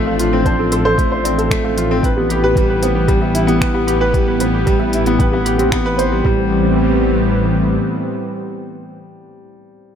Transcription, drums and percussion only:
0.19 closed hi-hat
0.45 kick, closed hi-hat
0.72 closed hi-hat
0.98 kick, closed hi-hat
1.25 closed hi-hat
1.39 closed hi-hat
1.51 finger snap, kick, closed hi-hat
1.78 closed hi-hat
2.03 kick, closed hi-hat
2.30 closed hi-hat
2.56 kick, closed hi-hat
2.83 closed hi-hat
3.08 kick, closed hi-hat
3.35 closed hi-hat
3.48 closed hi-hat
3.61 finger snap, kick, closed hi-hat
3.88 closed hi-hat
4.14 kick, closed hi-hat
4.40 closed hi-hat
4.67 kick, closed hi-hat
4.93 closed hi-hat
5.06 closed hi-hat
5.20 kick, closed hi-hat
5.46 closed hi-hat
5.59 closed hi-hat
5.72 finger snap, kick, closed hi-hat
5.99 closed hi-hat
6.25 kick

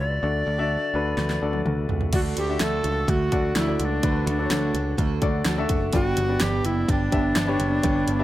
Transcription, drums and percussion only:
1.18 snare
1.30 snare
1.53 high tom
1.66 mid tom
1.89 floor tom
2.01 floor tom
2.13 kick, closed hi-hat, crash
2.37 closed hi-hat
2.60 snare, closed hi-hat
2.84 closed hi-hat
3.08 kick, closed hi-hat
3.32 kick, closed hi-hat
3.55 snare, closed hi-hat
3.80 closed hi-hat
4.03 kick, closed hi-hat
4.27 closed hi-hat
4.51 snare, closed hi-hat
4.75 closed hi-hat
4.98 kick, closed hi-hat
5.22 kick, closed hi-hat
5.45 snare, closed hi-hat
5.69 kick, closed hi-hat
5.93 kick, closed hi-hat
6.17 closed hi-hat
6.40 snare, closed hi-hat
6.65 closed hi-hat
6.89 kick, closed hi-hat
7.12 kick, closed hi-hat
7.36 snare, closed hi-hat
7.60 closed hi-hat
7.83 kick, closed hi-hat
8.08 closed hi-hat

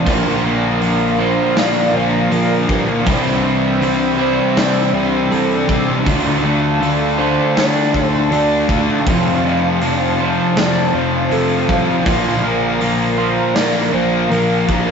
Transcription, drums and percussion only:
0.06 kick, open hi-hat
0.82 open hi-hat
1.57 snare, open hi-hat
2.32 open hi-hat
2.69 kick
3.06 kick, open hi-hat
3.27 snare
3.82 open hi-hat
4.57 snare, open hi-hat
5.32 open hi-hat
5.69 kick
6.06 kick, open hi-hat
6.83 open hi-hat
7.57 snare, open hi-hat
7.94 kick
8.32 open hi-hat
8.69 kick
9.07 kick, open hi-hat
9.82 open hi-hat
10.57 snare, open hi-hat
11.32 open hi-hat
11.69 kick
12.06 kick, open hi-hat
12.81 open hi-hat
13.56 snare, open hi-hat
14.32 open hi-hat
14.69 kick

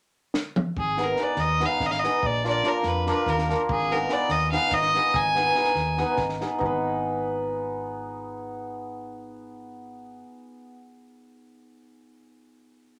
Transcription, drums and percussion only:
0.34 snare
0.56 mid tom
0.77 kick
0.97 snare
1.16 snare
1.36 snare
1.60 snare
1.80 kick, snare
1.91 snare
2.04 snare
2.23 kick
2.45 snare
2.64 snare
2.83 snare
3.06 snare
3.26 kick, snare
3.38 snare
3.50 snare
3.69 kick
3.91 snare
4.09 snare
4.29 snare
4.52 snare
4.70 kick, snare
4.82 snare
4.94 snare
5.14 kick
5.36 snare
5.55 snare
5.64 snare
5.75 snare
5.97 snare
6.16 kick, snare
6.29 snare
6.41 snare
6.61 kick

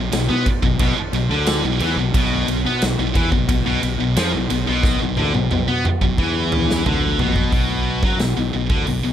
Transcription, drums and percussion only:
0.12 snare, ride
0.46 kick, ride
0.63 kick
0.79 kick, ride
1.13 ride
1.47 snare, ride
1.80 ride
2.14 kick, ride
2.48 ride
2.82 snare, ride
3.15 kick, ride
3.32 kick
3.49 kick, ride
3.83 ride
4.17 snare, ride
4.50 ride
4.83 kick, snare
5.17 high tom
5.34 high tom
5.51 mid tom
5.85 mid tom
6.01 kick
6.18 kick
6.52 mid tom
6.71 snare
6.86 floor tom
7.19 floor tom
7.36 kick
7.52 kick, open hi-hat
8.03 kick
8.19 snare, open hi-hat
8.70 kick
8.87 open hi-hat

